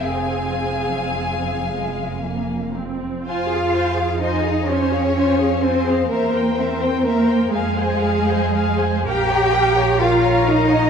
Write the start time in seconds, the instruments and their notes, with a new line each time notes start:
0.01 double bass section F1, cello section F2, viola section C4 G#4, violin section F5 G#5
1.69 viola section G#3
2.21 viola section A#3
2.77 viola section C4
3.26 double bass section F2, cello section F4, viola section F4 C5, violin section F5 G#5
3.50 viola section G#4, violin section F5
3.74 viola section F4 C5, violin section G#5
3.98 viola section G#4, violin section F5
4.21 cello section D#4, viola section F4 C5, violin section D#5 G#5
4.45 viola section G#4, violin section F5
4.68 cello section C#4, viola section F4 C5, violin section C#5 G#5
4.92 viola section G#4, violin section F5
5.17 viola section F4 C5, violin section G#5
5.40 viola section G#4, violin section F5
5.62 cello section C4, viola section F4 C5, violin section C5 G#5
5.87 viola section G#4, violin section F5
6.08 double bass section E2, cello section A#3, violin section A#4, viola section A#4 C5
6.12 violin section E5
6.34 viola section A#4 C5, violin section G5
6.56 cello section C4, viola section A#4 C5, violin section C5 E5
6.81 viola section A#4 C5, violin section G5
7.02 cello section A#3, violin section A#4, viola section A#4 C5
7.07 violin section E5
7.28 viola section A#4 C5, violin section G5
7.51 double bass section F2, cello section G#3, violin section G#4 G#5, viola section G#4 F5
7.77 viola section C5 G#5, violin section F5
8.02 viola section G#4 F5, violin section G#5
8.29 viola section C5 G#5, violin section F5
8.55 viola section G#4 F5, violin section G#5
8.81 viola section C5 G#5, violin section F5
9.06 double bass section A#1, cello section G4, viola section A#4 F5, violin section G5 A#5
9.30 viola section C#5 A#5, violin section F5
9.54 viola section A#4 F5, violin section A#5
9.77 viola section C#5 A#5, violin section F5
10.01 cello section F4, viola section A#4 F5, violin section F5 A#5
10.24 viola section C#5 A#5, violin section F5
10.47 cello section D#4, viola section A#4 F5, violin section D#5 A#5
10.67 viola section C#5 A#5, violin section F5